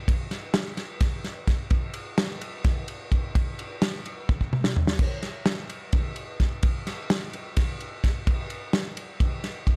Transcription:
0.08 kick loud
0.08 ride medium
0.31 snare soft
0.31 ride medium
0.54 snare loud
0.54 ride loud
0.77 snare soft
0.77 ride medium
1.01 kick loud
1.01 snare soft
1.01 ride loud
1.24 snare soft
1.24 ride medium
1.47 kick medium
1.47 snare soft
1.47 ride medium
1.70 kick loud
1.70 ride medium
1.94 ride medium
2.18 snare loud
2.18 ride loud
2.41 ride medium
2.64 kick loud
2.64 snare soft
2.64 ride loud
2.88 ride medium
3.12 kick medium
3.12 ride medium
3.35 kick loud
3.35 ride loud
3.59 ride medium
3.82 snare loud
3.82 ride loud
4.06 ride medium
4.29 kick loud
4.41 kick medium
4.53 mid tom medium
4.64 snare medium
4.76 floor tom loud
4.87 snare medium
4.99 kick loud
4.99 crash medium
5.23 snare soft
5.23 ride medium
5.46 snare loud
5.46 ride medium
5.70 ride medium
5.93 kick loud
5.93 ride loud
6.16 ride medium
6.40 kick medium
6.40 snare soft
6.40 ride medium
6.63 kick loud
6.63 ride loud
6.87 snare soft
6.87 ride medium
7.10 snare loud
7.10 ride loud
7.33 ride medium
7.57 kick loud
7.57 snare soft
7.57 ride loud
7.80 ride medium
8.04 kick medium
8.04 snare soft
8.04 ride medium
8.27 kick loud
8.27 ride loud
8.50 ride medium
8.73 snare loud
8.73 ride medium
8.97 ride medium
9.20 kick loud
9.20 ride loud
9.44 snare soft
9.44 ride medium
9.67 kick medium
9.67 ride medium

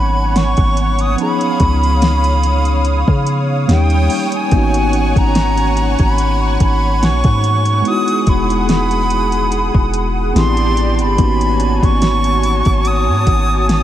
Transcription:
0.00 0.55 G#1 loud
0.00 1.13 F#3 medium
0.00 1.20 A#3 medium
0.00 1.14 B3 medium
0.00 1.15 C#4 medium
0.00 1.16 D#4 medium
0.00 3.65 C#5 medium
0.00 1.15 F#5 medium
0.00 1.15 G#5 medium
0.00 0.39 B5 loud
0.00 1.15 C#6 medium
0.36 1.03 C#6 loud
0.36 snare loud
0.36 closed hi-hat medium
0.57 1.16 G#1 loud
0.57 kick loud
0.57 closed hi-hat soft
0.77 closed hi-hat medium
0.99 1.19 D#6 medium
0.99 closed hi-hat medium
1.15 3.63 F3 medium
1.15 3.64 B3 medium
1.15 3.66 F5 medium
1.15 3.66 D#6 medium
1.15 closed hi-hat medium
1.19 3.65 C#4 medium
1.19 3.66 D#4 medium
1.19 3.40 B5 loud
1.23 3.67 G#4 medium
1.41 closed hi-hat medium
1.60 3.04 C#2 loud
1.60 kick loud
1.60 closed hi-hat medium
1.83 closed hi-hat soft
2.02 snare loud
2.02 closed hi-hat medium
2.24 closed hi-hat soft
2.43 closed hi-hat medium
2.65 closed hi-hat medium
2.85 closed hi-hat medium
3.08 3.66 C#3 loud
3.08 kick loud
3.27 closed hi-hat medium
3.67 4.08 D#2 loud
3.67 4.51 G3 medium
3.67 4.47 A#3 medium
3.67 4.51 C#4 medium
3.67 4.53 D#4 medium
3.67 4.51 C#5 medium
3.67 4.51 G5 medium
3.67 4.30 G5 loud
3.67 4.51 D#6 medium
3.67 snare loud
3.67 closed hi-hat medium
3.71 4.53 G4 medium
3.90 closed hi-hat soft
4.10 open hi-hat medium
4.32 5.20 G#5 loud
4.32 closed hi-hat medium
4.48 5.13 G#1 loud
4.48 7.79 A#3 medium
4.48 7.80 B3 medium
4.48 7.82 C#5 medium
4.48 7.82 F#5 medium
4.48 7.82 G#5 medium
4.48 7.82 C#6 medium
4.48 kick loud
4.48 closed hi-hat medium
4.52 7.81 C#4 medium
4.52 7.82 D#4 medium
4.56 7.83 F#4 medium
4.74 closed hi-hat medium
4.93 closed hi-hat medium
5.16 5.96 G#1 loud
5.16 6.00 A#5 loud
5.16 kick loud
5.16 closed hi-hat soft
5.35 snare loud
5.35 closed hi-hat medium
5.57 closed hi-hat medium
5.77 closed hi-hat medium
5.99 6.58 G#1 loud
5.99 6.57 B5 loud
5.99 kick medium
5.99 closed hi-hat medium
6.18 closed hi-hat medium
6.60 7.03 G#1 loud
6.60 7.06 B5 loud
6.60 kick loud
6.60 closed hi-hat medium
7.02 7.23 A#1 loud
7.02 7.89 C#6 loud
7.02 snare loud
7.02 closed hi-hat medium
7.24 7.83 G#2 loud
7.24 kick loud
7.24 closed hi-hat soft
7.44 closed hi-hat medium
7.65 closed hi-hat medium
7.82 10.29 G#3 medium
7.82 10.30 B3 medium
7.82 10.33 G#4 medium
7.82 10.33 F#5 medium
7.82 10.33 D#6 medium
7.82 closed hi-hat medium
7.86 10.31 D#4 medium
7.86 10.33 E4 medium
7.86 8.31 D#6 loud
7.90 10.33 F#4 medium
8.08 closed hi-hat medium
8.27 9.70 E1 loud
8.27 8.70 B5 medium
8.27 kick loud
8.27 closed hi-hat medium
8.50 closed hi-hat soft
8.69 10.07 B5 loud
8.69 snare loud
8.69 closed hi-hat medium
8.91 closed hi-hat medium
9.10 closed hi-hat medium
9.32 closed hi-hat medium
9.52 closed hi-hat medium
9.75 10.33 E1 loud
9.75 kick loud
9.94 closed hi-hat medium
10.34 11.01 A1 loud
10.34 11.16 B3 medium
10.34 11.18 C4 medium
10.34 11.19 D4 medium
10.34 11.19 E4 medium
10.34 11.18 G4 medium
10.34 11.18 D5 medium
10.34 13.83 A5 medium
10.34 11.18 C6 medium
10.34 10.94 C6 loud
10.34 snare loud
10.34 closed hi-hat medium
10.38 11.20 G4 medium
10.57 closed hi-hat soft
10.77 closed hi-hat medium
10.94 11.03 C6 medium
10.99 11.17 G1 loud
10.99 11.86 B5 loud
10.99 closed hi-hat medium
11.15 11.80 G#1 loud
11.15 13.83 A#3 medium
11.15 13.83 B3 medium
11.15 13.83 F#4 medium
11.15 13.83 C#5 medium
11.15 13.83 G#5 medium
11.15 kick loud
11.15 closed hi-hat medium
11.19 13.83 C#4 medium
11.19 13.83 D#4 medium
11.23 13.83 F#4 medium
11.41 closed hi-hat medium
11.60 closed hi-hat medium
11.83 12.63 G#1 loud
11.83 12.89 C#6 loud
11.83 kick loud
11.83 closed hi-hat soft
12.02 snare loud
12.02 closed hi-hat medium
12.24 closed hi-hat medium
12.43 closed hi-hat medium
12.65 13.09 G#1 loud
12.65 kick loud
12.65 closed hi-hat soft
12.85 13.70 D#6 loud
12.85 closed hi-hat medium
13.08 13.26 G#2 loud
13.27 13.83 G#1 loud
13.27 kick loud
13.27 closed hi-hat medium
13.69 13.83 D#6 loud
13.69 snare loud
13.69 closed hi-hat medium

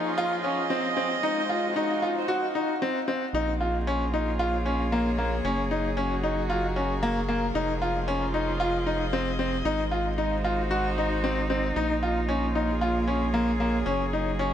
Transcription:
0.00 1.23 F3 medium
0.00 1.23 F4 medium
0.00 2.07 G#4 medium
0.08 2.07 D#5 medium
0.18 0.34 F4 medium
0.44 0.60 C#4 medium
0.70 0.86 C4 medium
0.97 1.13 C4 medium
1.23 2.28 G#3 medium
1.23 1.39 D#4 medium
1.49 1.65 F4 medium
1.64 2.28 F#4 medium
1.76 1.92 D#4 medium
1.85 2.29 D#4 medium
2.02 2.18 F4 medium
2.18 2.29 C5 medium
2.28 2.44 F#4 medium
2.55 2.71 D#4 medium
2.82 2.98 C4 medium
3.08 3.23 C4 medium
3.33 5.41 A#1 medium
3.33 6.28 A#3 medium
3.33 3.50 D#4 medium
3.55 5.44 F4 medium
3.61 3.76 F4 medium
3.61 10.50 G#4 medium
3.87 4.03 C#4 medium
4.14 4.29 D#4 medium
4.29 6.29 C#5 medium
4.39 4.55 F4 medium
4.66 4.81 C#4 medium
4.92 5.08 A#3 medium
5.18 5.34 A#3 medium
5.44 7.52 F#1 medium
5.44 7.55 F#3 medium
5.44 5.60 C#4 medium
5.71 5.87 D#4 medium
5.97 6.13 C#4 medium
5.97 7.55 F#4 medium
6.23 6.39 D#4 medium
6.39 8.39 A#4 medium
6.50 6.65 F4 medium
6.76 6.92 C#4 medium
7.03 7.18 A#3 medium
7.29 7.44 A#3 medium
7.55 9.63 F1 medium
7.55 9.65 F3 medium
7.55 7.71 D#4 medium
7.82 7.97 F4 medium
7.82 9.65 F4 medium
8.08 8.23 C#4 medium
8.34 8.50 D#4 medium
8.40 10.44 D#5 medium
8.60 8.76 F4 medium
8.87 9.02 D#4 medium
9.13 9.29 C4 medium
9.39 9.55 C4 medium
9.65 11.73 G#1 medium
9.65 11.76 G#3 medium
9.65 9.81 D#4 medium
9.91 10.07 F4 medium
10.03 12.60 D#4 medium
10.18 10.34 D#4 medium
10.31 11.76 F#4 medium
10.31 11.75 C5 medium
10.44 10.60 F4 medium
10.71 10.86 F#4 medium
10.98 11.13 D#4 medium
11.24 11.39 C4 medium
11.50 11.66 C4 medium
11.76 13.84 A#1 medium
11.76 14.54 A#3 medium
11.76 11.92 D#4 medium
11.90 13.86 F4 medium
12.03 12.18 F4 medium
12.29 12.44 C#4 medium
12.37 14.54 C#5 medium
12.55 12.71 D#4 medium
12.69 14.54 G#4 medium
12.81 12.97 F4 medium
13.08 13.23 C#4 medium
13.34 13.50 A#3 medium
13.60 13.76 A#3 medium
13.86 14.54 F#1 medium
13.86 14.54 F#3 medium
13.86 14.02 C#4 medium
14.13 14.29 D#4 medium
14.38 14.54 C#4 medium
14.38 14.54 F#4 medium

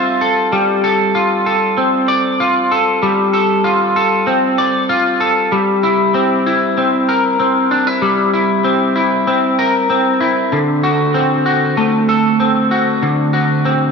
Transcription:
0.00 0.51 G3 medium
0.00 1.77 C4 medium
0.00 1.15 F4 medium
0.00 0.21 A4 soft
0.00 0.58 E5 medium
0.21 0.83 A4 medium
0.52 3.02 G3 medium
0.84 1.45 A4 medium
1.15 2.39 F4 soft
1.46 2.70 A4 soft
1.77 4.26 C4 medium
2.08 4.57 D5 medium
2.40 3.63 F4 medium
2.71 3.32 A4 medium
3.02 5.51 G3 medium
3.33 3.95 A4 soft
3.64 4.88 F4 medium
3.96 5.19 A4 soft
4.27 6.14 C4 medium
4.58 5.58 D5 soft
4.89 5.58 F4 medium
5.20 5.58 A4 soft
5.52 8.01 G3 medium
5.83 6.45 E4 soft
6.14 6.77 C4 medium
6.46 7.71 E4 medium
6.77 7.39 C4 medium
7.09 9.58 A#4 medium
7.40 8.64 C4 medium
7.71 7.87 D4 medium
7.87 8.32 E4 soft
8.02 10.52 G3 medium
8.34 8.94 E4 soft
8.64 9.27 C4 medium
8.96 10.19 E4 soft
9.27 9.89 C4 medium
9.59 10.59 A#4 medium
9.90 10.86 C4 medium
10.21 10.58 E4 soft
10.52 13.02 D3 medium
10.84 11.45 F#4 medium
11.14 12.39 C4 medium
11.46 12.70 F#4 medium
11.77 13.92 A3 medium
12.09 13.92 A4 medium
12.40 13.64 C4 medium
12.71 13.32 F#4 medium
13.02 13.92 D3 medium
13.33 13.92 F#4 medium
13.65 13.92 C4 medium

